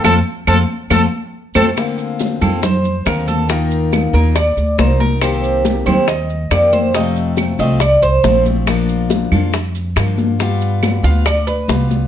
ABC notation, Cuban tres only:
X:1
M:4/4
L:1/8
Q:1/4=139
K:Bb
V:1 name="Cuban tres"
[FAc] z [FAc] z [FAc] z2 [FAc] | z3 A c2 B A | B2 z B d2 c B | c2 z c e2 d c |
e2 z e d c2 z | z8 | z3 f d =B2 z |]